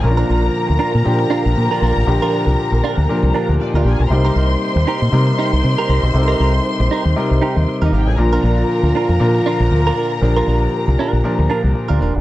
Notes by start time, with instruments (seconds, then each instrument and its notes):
Already playing: french horn section A#3
0.03 fingered electric bass A#1, grand piano A#2 F3 C#4 A#4, french horn section D3 F3 F4, string section A#4 A#5, muted clean electric guitar stroke
0.10 grand piano D4
0.17 clean electric guitar D4 F4 A#4
0.29 fingered electric bass A#1, clean electric guitar D4 F4 A#4
0.43 muted clean electric guitar stroke
0.67 fingered electric bass D2, muted clean electric guitar stroke
0.79 clean electric guitar D4 F4 A#4
0.93 fingered electric bass A#2, muted clean electric guitar stroke
1.04 grand piano A#2 F3 D4 G4, fingered electric bass A#2
1.19 muted clean electric guitar stroke
1.30 clean electric guitar D4 F4 A#4
1.45 fingered electric bass A#1, muted clean electric guitar stroke
1.57 fingered electric bass A#2, muted clean electric guitar stroke
1.71 clean electric guitar D4 F4 A#4
1.82 fingered electric bass A#1, clean electric guitar D4 F4 A#4
1.97 fingered electric bass A1, muted clean electric guitar stroke
2.06 fingered electric bass A#1, grand piano A#2 F3 D4 G4, french horn section G4, muted clean electric guitar stroke
2.22 clean electric guitar D4 F4 A#4
2.33 clean electric guitar D4 F4 A#4
2.46 fingered electric bass C2, muted clean electric guitar stroke
2.72 fingered electric bass A#1, muted clean electric guitar stroke
2.84 clean electric guitar D4 F4 A#4
2.97 fingered electric bass D2, muted clean electric guitar stroke
3.09 grand piano A#2 F3 D4 A#4
3.23 fingered electric bass C2, muted clean electric guitar stroke
3.34 clean electric guitar D4 F4 A#4
3.49 fingered electric bass D2, muted clean electric guitar stroke
3.60 string section D4 D5, muted clean electric guitar stroke
3.69 string section D#4 D#5
3.74 fingered electric bass D2, clean electric guitar D4 F4 A#4, string section F4 F5
3.84 fingered electric bass A#1, clean electric guitar D4 F4 A#4, string section G4 G5
3.92 string section G#4 G#5
4.00 fingered electric bass B1, string section A#4 A#5, muted clean electric guitar stroke
4.09 fingered electric bass C2, grand piano C3 G3 D#4 A#4, french horn section C3 G3 D#4, string section C5 C6, muted clean electric guitar stroke
4.25 clean electric guitar D#4 G4 A#4
4.36 fingered electric bass C2, clean electric guitar D#4 G4 A#4
4.51 muted clean electric guitar stroke
4.76 fingered electric bass D#2, muted clean electric guitar stroke
4.87 clean electric guitar D#4 G4 A#4
5.02 fingered electric bass A#2, muted clean electric guitar stroke
5.12 grand piano C3 G3 D#4 A#4, fingered electric bass C3
5.27 muted clean electric guitar stroke
5.38 clean electric guitar D#4 G4 A#4
5.53 fingered electric bass C2, muted clean electric guitar stroke
5.63 fingered electric bass C3, muted clean electric guitar stroke
5.78 clean electric guitar D#4 G4 A#4
5.88 fingered electric bass C2, clean electric guitar D#4 G4 A#4
6.03 fingered electric bass B1, muted clean electric guitar stroke
6.13 fingered electric bass C2, grand piano C3 G3 D#4 A4, french horn section C4, muted clean electric guitar stroke
6.22 grand piano A#4
6.28 clean electric guitar D#4 G4 A#4
6.40 fingered electric bass C2, clean electric guitar D#4 G4 A#4
6.55 muted clean electric guitar stroke
6.80 fingered electric bass A#1, muted clean electric guitar stroke
6.91 clean electric guitar D#4 G4 A#4
7.05 fingered electric bass D#2, muted clean electric guitar stroke
7.16 grand piano C3 G3 D#4 A#4
7.30 fingered electric bass C2, muted clean electric guitar stroke
7.42 clean electric guitar D#4 G4 A#4
7.56 fingered electric bass D#2, muted clean electric guitar stroke
7.68 muted clean electric guitar stroke
7.82 fingered electric bass D#2, clean electric guitar D#4 G4 A#4, string section D#4 D#5
7.92 fingered electric bass G#1, clean electric guitar D#4 G4 A#4, string section F4 F5
8.00 string section G4 G5
8.07 fingered electric bass A1, string section G#4 G#5, muted clean electric guitar stroke
8.17 fingered electric bass A#1, grand piano A#2 F3 D4 A#4, french horn section D3 F3 A#3 F4, string section A#4 A#5, muted clean electric guitar stroke
8.33 clean electric guitar D4 F4 A#4
8.44 fingered electric bass A#1, clean electric guitar D4 F4 A#4
8.59 muted clean electric guitar stroke
8.83 fingered electric bass D2, muted clean electric guitar stroke
8.95 clean electric guitar D4 F4 A#4
9.09 fingered electric bass F2, muted clean electric guitar stroke
9.20 grand piano A#2 F3 D4 A#4, fingered electric bass A#2
9.35 muted clean electric guitar stroke
9.46 clean electric guitar D4 F4 A#4
9.60 fingered electric bass A#1, muted clean electric guitar stroke
9.71 fingered electric bass D2, muted clean electric guitar stroke
9.87 clean electric guitar D4 F4 A#4
9.97 clean electric guitar D4 F4 A#4
10.13 muted clean electric guitar stroke
10.21 fingered electric bass A#1, grand piano A#2 F3 D4 A#4, french horn section G4, muted clean electric guitar stroke
10.37 clean electric guitar D4 F4 A#4
10.48 fingered electric bass A#1, clean electric guitar D4 F4 A#4
10.62 muted clean electric guitar stroke
10.88 fingered electric bass C2, muted clean electric guitar stroke
10.99 clean electric guitar D4 F4 A#4
11.13 fingered electric bass A#1, muted clean electric guitar stroke
11.24 grand piano A#2 F3 D4 A#4
11.39 fingered electric bass D2, muted clean electric guitar stroke
11.50 clean electric guitar D4 F4 A#4
11.63 fingered electric bass C2, muted clean electric guitar stroke
11.75 muted clean electric guitar stroke
11.88 fingered electric bass D2, clean electric guitar D4 F4 A#4
12.01 fingered electric bass D#1, clean electric guitar D4 F4 A#4
12.15 fingered electric bass E1, muted clean electric guitar stroke